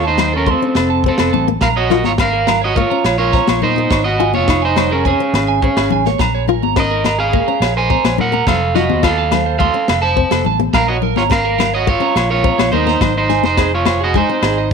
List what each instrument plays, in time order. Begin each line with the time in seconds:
Already playing: fingered electric bass D#2
0.05 clean electric guitar D#4 C5 A5
0.18 clean electric guitar C5, snare, low conga, low agogo
0.33 clean electric guitar C#4 A4
0.37 clean electric guitar A#4
0.46 nylon-string guitar A3, clean electric guitar A4 C6, kick
0.51 clean electric guitar C4
0.62 nylon-string guitar C#4
0.75 fingered electric bass F1, clean electric guitar A4, snare, low agogo
0.90 clean electric guitar A5
1.04 nylon-string guitar C4, kick
1.08 clean electric guitar C4 A4
1.18 fingered electric bass F1, clean electric guitar A4, snare, high conga, low agogo
1.33 fingered electric bass A1, clean electric guitar A5, high conga, low conga
1.48 nylon-string guitar A#3, muted clean electric guitar stroke, high conga
1.61 fingered electric bass A#1, clean electric guitar A#4 F5 A#5, kick, snare, low conga, low agogo
1.76 clean electric guitar F#4 C#5 D#5
1.90 nylon-string guitar F4, clean electric guitar A#4, snare, low conga
2.04 fingered electric bass G#1, clean electric guitar F4 C#5 A#5, snare, high conga
2.18 nylon-string guitar C#4, clean electric guitar A#4 F5, kick, snare, low agogo
2.33 clean electric guitar A#4
2.47 clean electric guitar A#5, snare, low conga, low agogo
2.61 clean electric guitar F#4 C#5 D#5
2.75 nylon-string guitar A#3, clean electric guitar F4 A#4 C#5, kick
2.90 nylon-string guitar C#4, clean electric guitar A#5
3.04 fingered electric bass A#1, clean electric guitar C#5, snare, low agogo
3.18 clean electric guitar F4 A#4 C#5
3.33 nylon-string guitar C4, clean electric guitar A#5, kick, snare
3.47 fingered electric bass A#1, clean electric guitar C#5, snare, high conga, low agogo
3.62 fingered electric bass A#2, clean electric guitar D#4 A#4 C5, high conga, low conga
3.76 nylon-string guitar A#3, high conga
3.90 fingered electric bass G#1, clean electric guitar C#5, kick, snare, low agogo
4.04 clean electric guitar F#4 D#5
4.20 nylon-string guitar F4, clean electric guitar G#5, low conga
4.34 fingered electric bass F1, clean electric guitar F4 C#5, high conga
4.48 clean electric guitar D#4, nylon-string guitar D#4, kick, snare, low agogo
4.62 clean electric guitar D#4 C5 G#5
4.76 clean electric guitar C#5, snare, low conga, low agogo
4.91 clean electric guitar C#4 G#4 A#4
5.05 nylon-string guitar C4, clean electric guitar C#4 G#4 G#5, kick
5.20 nylon-string guitar C#4
5.33 fingered electric bass G#1, snare, low agogo
5.48 clean electric guitar G#5
5.62 nylon-string guitar C4, clean electric guitar C#4 G#4, kick
5.77 fingered electric bass G#1, clean electric guitar G#4, snare, low agogo
5.91 fingered electric bass A1, clean electric guitar G#5, high conga, low conga
6.05 nylon-string guitar A#3, clean electric guitar C#5, snare, high conga
6.19 fingered electric bass A#1, clean electric guitar A#5, kick, snare, low conga, low agogo
6.35 clean electric guitar C#5
6.48 nylon-string guitar F4, clean electric guitar A#4, low conga
6.62 fingered electric bass G#1, clean electric guitar A#5, high conga
6.76 nylon-string guitar C#4, clean electric guitar A#4 D#5, kick, snare, low agogo
6.91 clean electric guitar A#4
7.04 clean electric guitar A#5, snare, low conga, low agogo
7.19 clean electric guitar G#4 F5
7.33 nylon-string guitar A#3, clean electric guitar A#4, kick
7.48 nylon-string guitar C#4, clean electric guitar A#5
7.60 fingered electric bass A#1, clean electric guitar C#5, snare, low agogo
7.77 clean electric guitar A#4 C5 G#5
7.90 nylon-string guitar C4, clean electric guitar A#5, kick
8.04 fingered electric bass A#1, clean electric guitar C#5, snare, high conga, low agogo
8.18 fingered electric bass A#2, clean electric guitar A#4 F#5, muted clean electric guitar stroke, high conga, low conga
8.32 nylon-string guitar A#3, clean electric guitar A#5, high conga
8.47 fingered electric bass F1, clean electric guitar A4 C5 F5, kick, snare, low conga, low agogo
8.75 nylon-string guitar F4, clean electric guitar F#4 D#5 F5, snare, low conga
8.89 fingered electric bass D#2, clean electric guitar C5, high conga
9.03 nylon-string guitar F4, clean electric guitar A4 F5, kick, snare, low agogo
9.18 clean electric guitar A5
9.32 clean electric guitar C5, snare, low conga, low agogo
9.46 clean electric guitar C5
9.59 nylon-string guitar A3, clean electric guitar A4 F5 C6, kick
9.74 nylon-string guitar C#4
9.88 fingered electric bass F1, clean electric guitar A4, snare, low agogo
10.02 clean electric guitar C5 A5
10.17 nylon-string guitar C4, kick
10.30 fingered electric bass F1, clean electric guitar A4, snare, high conga, low agogo
10.44 fingered electric bass A1, clean electric guitar A5, high conga, low conga
10.60 muted nylon-string guitar stroke, high conga
10.73 fingered electric bass A#1, clean electric guitar A#4 F5 A#5, kick, snare, low conga, low agogo
10.88 clean electric guitar F#4 C#5 D#5
11.02 clean electric guitar A#4, low conga
11.16 fingered electric bass G#1, clean electric guitar F4 C#5 A#5, snare, high conga
11.30 nylon-string guitar C#4, clean electric guitar A#4 F5, kick, snare, low agogo
11.45 clean electric guitar A#4
11.58 clean electric guitar A#5, snare, low conga, low agogo
11.74 clean electric guitar F#4 C#5 D#5
11.87 clean electric guitar F4 A#4 C#5, muted nylon-string guitar stroke, kick
12.00 nylon-string guitar C#4, clean electric guitar A#5
12.15 fingered electric bass A#1, clean electric guitar C#5, snare, low agogo
12.30 clean electric guitar F4 A#4 C#5
12.44 nylon-string guitar C4, clean electric guitar A#5, kick
12.58 fingered electric bass A#1, clean electric guitar C#5, snare, high conga, low agogo
12.72 fingered electric bass D#2, clean electric guitar D#4 A#4 C5, high conga, low conga
12.87 nylon-string guitar A#3, clean electric guitar A#5, snare, high conga
13.00 fingered electric bass G#1, clean electric guitar C5, kick, snare, low conga, low agogo
13.17 clean electric guitar D#4 C5
13.29 nylon-string guitar D#4, clean electric guitar G#5, snare, low conga
13.43 fingered electric bass F1, clean electric guitar D#4 C5, snare, high conga
13.57 nylon-string guitar C4, clean electric guitar G#4, kick, snare, low agogo
13.75 clean electric guitar F4 C#5
13.86 clean electric guitar C5, snare, high conga, low conga, low agogo
14.00 clean electric guitar F#4 G#4 D#5
14.14 nylon-string guitar G#3, clean electric guitar D#4 C5 G#5, kick
14.30 nylon-string guitar C4
14.42 fingered electric bass G#1, clean electric guitar G#4, snare, low agogo
14.58 clean electric guitar D#5